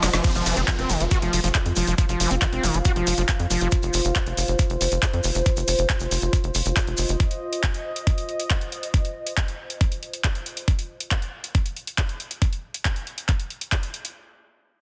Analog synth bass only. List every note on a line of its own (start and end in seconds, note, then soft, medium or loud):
0.03 0.10 F1 loud
0.13 0.21 F1 medium
0.35 0.42 F1 medium
0.46 0.53 F1 loud
0.57 0.64 F1 medium
0.79 0.86 F1 medium
0.90 0.97 F1 loud
1.00 1.08 F1 medium
1.22 1.29 F1 medium
1.33 1.40 F1 loud
1.44 1.51 F1 medium
1.66 1.73 F2 medium
1.77 1.84 F1 loud
1.87 1.94 F1 medium
2.09 2.16 F1 medium
2.20 2.27 F1 loud
2.31 2.38 F1 medium
2.53 2.60 F1 medium
2.63 2.71 F1 loud
2.74 2.81 F1 medium
2.96 3.03 F1 medium
3.07 3.14 F1 loud
3.18 3.25 F1 medium
3.40 3.47 F2 medium
3.50 3.58 F1 loud
3.61 3.68 F1 medium
3.83 3.90 F1 medium
3.94 4.01 F1 loud
4.05 4.12 F1 medium
4.26 4.34 F1 medium
4.37 4.44 F1 loud
4.48 4.55 F1 medium
4.70 4.77 F1 medium
4.81 4.88 F1 loud
4.92 4.99 F1 medium
5.13 5.21 F2 medium
5.24 5.31 F1 loud
5.35 5.42 F1 medium
5.57 5.64 F1 medium
5.68 5.75 F1 loud
5.79 5.86 F1 medium
6.00 6.08 F1 medium
6.11 6.18 F1 loud
6.22 6.29 F1 medium
6.44 6.51 F1 medium
6.55 6.62 F1 loud
6.66 6.73 F1 medium
6.87 6.95 F1 medium
6.98 7.05 F1 loud
7.09 7.16 F1 medium